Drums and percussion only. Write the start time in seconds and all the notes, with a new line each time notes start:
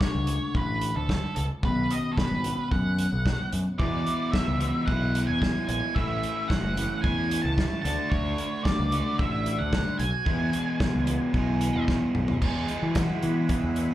0.01 kick, snare
0.27 closed hi-hat
0.55 kick
0.81 closed hi-hat
1.09 kick, snare
1.36 closed hi-hat
1.63 kick
1.91 closed hi-hat
2.18 kick, snare
2.44 closed hi-hat
2.71 kick
2.98 closed hi-hat
3.26 kick, snare
3.52 closed hi-hat
3.80 kick
4.07 closed hi-hat
4.34 kick, snare
4.61 closed hi-hat
4.88 kick
5.15 closed hi-hat
5.42 kick, snare
5.69 closed hi-hat
5.96 kick
6.23 closed hi-hat
6.50 kick, snare
6.77 closed hi-hat
7.04 kick
7.31 closed hi-hat
7.58 kick, snare
7.85 closed hi-hat
8.12 kick
8.38 closed hi-hat
8.65 kick, snare
8.92 closed hi-hat
9.19 kick
9.46 closed hi-hat
9.73 kick, snare
9.99 closed hi-hat
10.26 kick
10.53 closed hi-hat
10.80 kick, snare
11.07 closed hi-hat
11.34 kick
11.61 closed hi-hat
11.88 kick, snare
12.15 mid tom
12.28 floor tom
12.42 kick, crash
12.68 closed hi-hat
12.95 kick, snare, closed hi-hat
13.23 closed hi-hat
13.49 kick, closed hi-hat
13.76 closed hi-hat